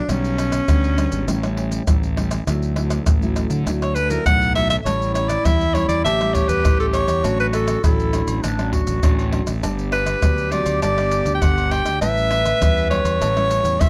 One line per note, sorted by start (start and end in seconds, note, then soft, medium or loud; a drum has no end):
0.00 0.10 D4 medium
0.08 0.59 B1 loud
0.08 0.65 B2 medium
0.08 0.47 G3 medium
0.08 0.47 B3 medium
0.08 1.88 C#4 medium
0.08 pandeiro medium
0.08 tamborim medium
0.08 maracas medium
0.08 surdo medium
0.24 pandeiro soft
0.24 maracas soft
0.39 pandeiro medium
0.39 tamborim medium
0.39 maracas medium
0.52 pandeiro medium
0.52 tamborim medium
0.52 maracas medium
0.68 1.06 D2 loud
0.68 1.25 B2 medium
0.68 0.86 G3 medium
0.68 0.86 B3 medium
0.68 0.86 D4 medium
0.68 pandeiro medium
0.68 tamborim medium
0.68 maracas medium
0.68 surdo loud
0.84 pandeiro soft
0.84 maracas soft
0.97 1.23 G3 medium
0.97 1.23 B3 medium
0.97 1.23 D4 medium
0.97 pandeiro medium
0.97 tamborim medium
0.97 maracas medium
1.12 1.25 G#1 medium
1.12 pandeiro medium
1.12 maracas medium
1.28 1.78 A1 medium
1.28 1.85 A2 medium
1.28 1.37 G3 medium
1.28 1.37 C#4 medium
1.28 1.37 E4 medium
1.28 pandeiro medium
1.28 tamborim medium
1.28 maracas medium
1.28 surdo medium
1.43 1.83 G3 medium
1.43 1.83 C#4 medium
1.43 1.84 E4 medium
1.43 pandeiro soft
1.43 tamborim medium
1.43 maracas soft
1.57 pandeiro medium
1.72 pandeiro medium
1.72 maracas medium
1.87 2.38 A1 medium
1.87 2.45 E3 medium
1.87 2.05 G3 medium
1.87 2.06 C#4 medium
1.87 2.06 E4 medium
1.87 pandeiro medium
1.87 tamborim medium
1.87 maracas medium
1.87 surdo loud
2.03 pandeiro soft
2.03 maracas soft
2.17 2.35 G3 medium
2.17 2.35 C#4 medium
2.17 2.35 E4 medium
2.17 pandeiro medium
2.17 tamborim medium
2.31 pandeiro medium
2.31 tamborim medium
2.31 maracas medium
2.47 2.98 D2 loud
2.47 3.04 D3 medium
2.47 2.72 F#3 medium
2.47 2.72 A3 medium
2.47 2.73 E4 medium
2.47 pandeiro medium
2.47 tamborim medium
2.47 maracas medium
2.47 surdo medium
2.62 pandeiro soft
2.62 maracas soft
2.76 3.17 F#3 medium
2.76 3.17 A3 medium
2.76 3.17 E4 medium
2.76 pandeiro medium
2.76 tamborim medium
2.90 pandeiro medium
2.90 tamborim medium
2.90 maracas medium
3.06 3.45 A1 medium
3.06 3.64 A2 medium
3.06 pandeiro medium
3.06 tamborim medium
3.06 maracas medium
3.06 surdo loud
3.22 3.62 F#3 medium
3.22 3.62 A3 medium
3.22 3.62 E4 medium
3.22 pandeiro soft
3.22 maracas soft
3.36 pandeiro medium
3.36 tamborim medium
3.36 maracas medium
3.50 3.63 D3 medium
3.50 pandeiro medium
3.50 maracas medium
3.66 4.17 D2 medium
3.66 4.23 D3 medium
3.66 3.95 F#3 medium
3.66 3.95 A3 medium
3.66 3.95 E4 medium
3.66 pandeiro medium
3.66 tamborim medium
3.66 maracas medium
3.66 surdo medium
3.82 3.97 C#5 medium
3.82 pandeiro soft
3.82 tamborim medium
3.82 maracas soft
3.95 4.12 B4 loud
3.95 pandeiro medium
3.95 maracas medium
4.10 4.51 F#3 medium
4.10 4.51 A3 medium
4.10 4.51 E4 medium
4.10 4.25 A#4 medium
4.10 pandeiro medium
4.10 maracas medium
4.25 4.77 B1 medium
4.25 4.83 A2 medium
4.25 4.54 F#5 loud
4.25 pandeiro medium
4.25 tamborim medium
4.25 maracas medium
4.25 surdo loud
4.42 pandeiro soft
4.42 maracas soft
4.55 4.73 F#3 medium
4.55 4.74 A3 medium
4.55 4.74 E4 medium
4.55 4.70 E5 loud
4.55 pandeiro medium
4.55 tamborim medium
4.70 4.77 E5 loud
4.70 pandeiro medium
4.70 tamborim medium
4.70 maracas medium
4.85 5.36 A1 loud
4.85 5.43 A2 medium
4.85 5.24 G3 medium
4.85 5.25 C#4 medium
4.85 6.07 E4 loud
4.85 5.25 E4 medium
4.85 5.13 C#5 medium
4.85 pandeiro medium
4.85 tamborim medium
4.85 low agogo medium
4.85 maracas medium
4.85 surdo medium
5.02 pandeiro soft
5.02 maracas soft
5.14 5.30 C#5 medium
5.14 pandeiro medium
5.14 tamborim medium
5.14 maracas medium
5.29 5.46 D5 medium
5.29 pandeiro medium
5.29 tamborim medium
5.29 maracas medium
5.45 5.83 E2 medium
5.45 6.02 E3 medium
5.45 5.63 G3 medium
5.45 5.63 C#4 medium
5.45 5.64 E4 medium
5.45 5.76 E5 loud
5.45 pandeiro medium
5.45 tamborim medium
5.45 maracas medium
5.45 surdo loud
5.61 pandeiro soft
5.61 maracas soft
5.74 6.03 G3 medium
5.74 6.03 C#4 medium
5.74 6.03 E4 medium
5.74 5.88 C#5 medium
5.74 pandeiro medium
5.74 tamborim medium
5.74 high agogo medium
5.88 6.02 E2 medium
5.88 6.03 D5 medium
5.88 pandeiro medium
5.88 high agogo medium
5.88 maracas medium
6.04 6.43 A1 medium
6.04 6.62 A2 medium
6.04 7.26 G4 loud
6.04 6.35 E5 loud
6.04 pandeiro medium
6.04 tamborim medium
6.04 low agogo medium
6.04 maracas medium
6.04 surdo medium
6.21 6.60 G3 medium
6.21 6.61 C#4 medium
6.21 6.61 E4 medium
6.21 pandeiro soft
6.21 tamborim medium
6.21 maracas soft
6.34 6.50 C#5 medium
6.34 pandeiro medium
6.34 maracas medium
6.34 surdo medium
6.48 6.62 E2 medium
6.48 6.79 B4 medium
6.48 pandeiro medium
6.48 maracas medium
6.64 7.03 A1 loud
6.64 7.21 E3 medium
6.64 7.20 G3 medium
6.64 7.20 C#4 medium
6.64 7.20 E4 medium
6.64 pandeiro medium
6.64 tamborim medium
6.64 high agogo medium
6.64 maracas medium
6.64 surdo loud
6.80 6.87 A4 medium
6.80 pandeiro soft
6.80 high agogo medium
6.80 maracas soft
6.94 7.36 C#5 medium
6.94 pandeiro medium
6.94 tamborim medium
6.94 high agogo medium
6.94 maracas medium
7.08 7.21 E2 medium
7.08 pandeiro medium
7.08 tamborim medium
7.08 maracas medium
7.24 7.75 A1 loud
7.24 7.81 A2 medium
7.24 7.79 F#3 medium
7.24 7.79 C#4 medium
7.24 7.80 D4 medium
7.24 7.85 F#4 loud
7.24 pandeiro medium
7.24 tamborim medium
7.24 low agogo medium
7.24 maracas medium
7.24 surdo medium
7.40 7.47 B4 medium
7.40 pandeiro soft
7.40 maracas soft
7.53 7.82 A4 medium
7.53 pandeiro medium
7.53 tamborim medium
7.53 maracas medium
7.68 pandeiro medium
7.68 tamborim medium
7.68 maracas medium
7.83 8.22 A1 medium
7.83 8.41 A2 medium
7.83 8.09 F#3 medium
7.83 8.09 C#4 medium
7.83 8.10 D4 medium
7.83 8.44 E4 medium
7.83 8.40 A4 medium
7.83 pandeiro medium
7.83 tamborim medium
7.83 maracas medium
7.83 surdo loud
8.00 pandeiro soft
8.00 maracas soft
8.13 8.42 F#3 medium
8.13 8.42 C#4 medium
8.13 8.42 D4 medium
8.13 pandeiro medium
8.13 tamborim medium
8.13 high agogo medium
8.13 maracas medium
8.27 8.41 A1 medium
8.27 pandeiro medium
8.27 high agogo medium
8.27 maracas medium
8.43 8.82 A1 medium
8.43 9.00 A2 medium
8.43 8.74 D4 medium
8.43 pandeiro medium
8.43 tamborim medium
8.43 low agogo medium
8.43 maracas medium
8.43 surdo medium
8.59 8.99 F#3 medium
8.59 8.99 C#4 medium
8.59 8.99 D4 medium
8.59 pandeiro soft
8.59 tamborim medium
8.59 maracas soft
8.72 9.35 F#4 medium
8.72 pandeiro medium
8.72 surdo medium
8.87 9.00 A1 medium
8.87 pandeiro medium
8.87 maracas medium
9.03 9.41 A1 loud
9.03 9.60 A2 medium
9.03 9.21 F#3 medium
9.03 9.21 C#4 medium
9.03 9.21 D4 medium
9.03 pandeiro medium
9.03 tamborim medium
9.03 high agogo medium
9.03 maracas medium
9.03 surdo loud
9.19 pandeiro soft
9.19 high agogo medium
9.19 maracas soft
9.33 9.50 F#3 medium
9.33 9.51 C#4 medium
9.33 9.51 D4 medium
9.33 pandeiro medium
9.33 tamborim medium
9.33 high agogo medium
9.47 9.60 A1 medium
9.47 pandeiro medium
9.47 tamborim medium
9.47 maracas medium
9.63 10.14 G1 medium
9.63 10.20 G2 medium
9.63 10.02 B3 medium
9.63 10.02 D4 medium
9.63 11.97 G4 loud
9.63 pandeiro medium
9.63 tamborim medium
9.63 low agogo medium
9.63 maracas medium
9.63 surdo medium
9.79 pandeiro soft
9.79 maracas soft
9.92 10.54 B4 medium
9.92 pandeiro medium
9.92 tamborim medium
10.06 pandeiro medium
10.06 tamborim medium
10.06 maracas medium
10.22 10.61 D2 loud
10.22 10.80 D3 medium
10.22 10.48 F#3 medium
10.22 10.48 B3 medium
10.22 10.48 D4 medium
10.22 pandeiro medium
10.22 tamborim medium
10.22 maracas medium
10.22 surdo loud
10.38 pandeiro soft
10.38 maracas soft
10.52 10.81 F#3 medium
10.52 10.81 B3 medium
10.52 10.81 D4 medium
10.52 10.82 D5 medium
10.52 pandeiro medium
10.52 tamborim medium
10.52 high agogo medium
10.52 maracas medium
10.66 10.79 D2 medium
10.66 pandeiro medium
10.66 high agogo medium
10.66 maracas medium
10.82 11.20 G1 medium
10.82 11.39 G2 medium
10.82 11.31 D5 medium
10.82 pandeiro medium
10.82 tamborim medium
10.82 low agogo medium
10.82 maracas medium
10.82 surdo medium
10.98 11.38 B3 medium
10.98 11.38 D4 medium
10.98 pandeiro soft
10.98 tamborim medium
10.98 maracas soft
11.11 pandeiro medium
11.11 maracas medium
11.26 11.39 D2 medium
11.26 pandeiro medium
11.26 maracas medium
11.35 11.43 G5 medium
11.41 11.80 G1 loud
11.41 11.99 D3 medium
11.41 11.97 B3 medium
11.41 11.98 D4 medium
11.41 11.72 F#5 medium
11.41 pandeiro medium
11.41 tamborim medium
11.41 high agogo medium
11.41 maracas medium
11.41 surdo loud
11.58 pandeiro soft
11.58 high agogo medium
11.58 maracas soft
11.71 12.01 G5 medium
11.71 pandeiro medium
11.71 tamborim medium
11.71 high agogo medium
11.85 11.98 D2 medium
11.85 pandeiro medium
11.85 tamborim medium
11.85 maracas medium
12.01 12.52 A1 medium
12.01 12.58 A2 medium
12.01 12.40 G3 medium
12.01 12.40 C#4 medium
12.01 12.41 E4 medium
12.01 13.89 B4 loud
12.01 12.87 E5 loud
12.01 pandeiro medium
12.01 tamborim medium
12.01 low agogo medium
12.01 maracas medium
12.01 surdo medium
12.17 pandeiro soft
12.17 maracas soft
12.31 pandeiro medium
12.31 tamborim medium
12.45 pandeiro medium
12.45 tamborim medium
12.45 maracas medium
12.61 12.99 E2 medium
12.61 13.18 E3 medium
12.61 12.86 G3 medium
12.61 12.87 C#4 medium
12.61 12.87 E4 medium
12.61 pandeiro medium
12.61 tamborim medium
12.61 maracas medium
12.61 surdo loud
12.77 pandeiro soft
12.77 maracas soft
12.90 13.31 G3 medium
12.90 13.31 C#4 medium
12.90 13.31 E4 medium
12.90 13.82 C#5 loud
12.90 pandeiro medium
12.90 tamborim medium
12.90 high agogo medium
13.04 13.18 E2 medium
13.04 pandeiro medium
13.04 high agogo medium
13.04 maracas medium
13.20 13.58 A1 medium
13.20 13.78 A2 medium
13.20 pandeiro medium
13.20 tamborim medium
13.20 low agogo medium
13.20 maracas medium
13.20 surdo medium
13.36 13.76 G3 medium
13.36 13.76 C#4 medium
13.36 13.76 E4 medium
13.36 pandeiro soft
13.36 tamborim medium
13.36 maracas soft
13.51 pandeiro medium
13.51 maracas medium
13.64 13.77 E2 medium
13.64 pandeiro medium
13.64 maracas medium
13.80 13.89 F#1 medium
13.80 13.89 E3 medium
13.80 13.89 G3 medium
13.80 13.89 C#4 medium
13.80 13.89 E4 medium
13.80 13.89 E5 loud
13.80 pandeiro medium
13.80 tamborim medium
13.80 high agogo medium
13.80 maracas medium
13.80 surdo loud